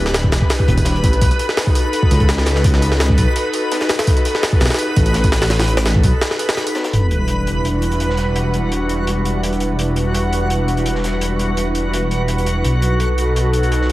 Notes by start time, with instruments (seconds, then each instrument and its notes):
Already playing: detuned saw bass D1, analog synth pad D4 E4 G4 B4, synth texture B4 B5
0.06 snare
0.14 snare, closed hi-hat, open hi-hat
0.24 kick
0.32 detuned saw bass E1, snare, closed hi-hat, open hi-hat
0.42 kick
0.50 snare, closed hi-hat, open hi-hat
0.60 kick
0.68 detuned saw bass E1, kick, closed hi-hat
0.77 kick, open hi-hat
0.85 snare, closed hi-hat, open hi-hat
0.95 detuned saw bass D1, closed hi-hat
1.04 detuned saw bass A1, kick, closed hi-hat, open hi-hat
1.13 closed hi-hat
1.21 detuned saw bass B1, analog synth pad D#4 F#4 A4, kick, closed hi-hat, open hi-hat
1.31 closed hi-hat
1.39 closed hi-hat, open hi-hat
1.49 snare
1.57 snare, closed hi-hat, open hi-hat
1.67 kick
1.75 closed hi-hat, open hi-hat
1.93 closed hi-hat, open hi-hat
2.03 kick
2.11 detuned saw bass C#2, closed hi-hat, open hi-hat
2.20 kick, closed hi-hat
2.29 snare, closed hi-hat, open hi-hat
2.38 snare
2.46 snare, closed hi-hat, open hi-hat
2.56 snare
2.64 kick, closed hi-hat, open hi-hat
2.74 snare
2.82 closed hi-hat, open hi-hat
2.92 snare
3.00 snare, closed hi-hat, open hi-hat
3.10 kick
3.18 detuned saw bass B1, kick, closed hi-hat, open hi-hat
3.36 closed hi-hat, open hi-hat
3.53 closed hi-hat, open hi-hat
3.72 snare, closed hi-hat, open hi-hat
3.80 snare, closed hi-hat
3.89 snare, closed hi-hat, open hi-hat
3.99 snare, open hi-hat
4.07 kick, closed hi-hat, open hi-hat
4.17 closed hi-hat
4.25 closed hi-hat, open hi-hat
4.35 snare
4.43 snare, closed hi-hat, open hi-hat
4.53 kick
4.60 detuned saw bass B1, snare, closed hi-hat, open hi-hat
4.66 snare, open hi-hat
4.70 snare, open hi-hat
4.74 snare, open hi-hat
4.79 closed hi-hat, open hi-hat
4.96 detuned saw bass A1, kick, closed hi-hat, open hi-hat
5.06 closed hi-hat
5.14 snare, closed hi-hat, open hi-hat
5.24 kick, snare, open hi-hat
5.32 snare, closed hi-hat, open hi-hat
5.42 snare, closed hi-hat, open hi-hat
5.50 snare, closed hi-hat, open hi-hat
5.59 snare, closed hi-hat, open hi-hat
5.68 closed hi-hat, open hi-hat
5.77 snare, open hi-hat
5.85 snare, closed hi-hat, open hi-hat
5.95 kick
6.04 detuned saw bass B1, kick, closed hi-hat, open hi-hat
6.21 snare, closed hi-hat, open hi-hat
6.31 snare
6.39 closed hi-hat, open hi-hat
6.49 snare, open hi-hat
6.57 snare, closed hi-hat
6.67 closed hi-hat, open hi-hat
6.75 snare, closed hi-hat
6.84 snare, closed hi-hat
6.93 detuned saw bass E1, analog synth pad G3 D4 E4 B4, synth texture F#4 F#5, closed hi-hat, sub drop
7.11 closed hi-hat
7.28 closed hi-hat
7.47 closed hi-hat
7.65 closed hi-hat
7.82 closed hi-hat
7.92 closed hi-hat
8.00 closed hi-hat
8.09 snare
8.17 snare, closed hi-hat
8.36 closed hi-hat
8.54 closed hi-hat
8.72 closed hi-hat
8.89 closed hi-hat
9.07 closed hi-hat
9.25 closed hi-hat
9.43 closed hi-hat
9.53 closed hi-hat
9.60 closed hi-hat
9.79 closed hi-hat
9.96 closed hi-hat
10.14 closed hi-hat
10.33 closed hi-hat
10.50 closed hi-hat
10.68 closed hi-hat
10.77 closed hi-hat
10.86 closed hi-hat
10.95 snare
11.04 snare, closed hi-hat
11.21 closed hi-hat
11.39 closed hi-hat
11.57 closed hi-hat
11.75 closed hi-hat
11.94 closed hi-hat
12.11 closed hi-hat
12.28 closed hi-hat
12.38 closed hi-hat
12.46 closed hi-hat
12.64 detuned saw bass B1, analog synth pad D#4 F#4 A4, closed hi-hat
12.82 closed hi-hat
13.00 closed hi-hat
13.18 closed hi-hat
13.36 closed hi-hat
13.53 closed hi-hat
13.63 closed hi-hat
13.72 closed hi-hat
13.81 snare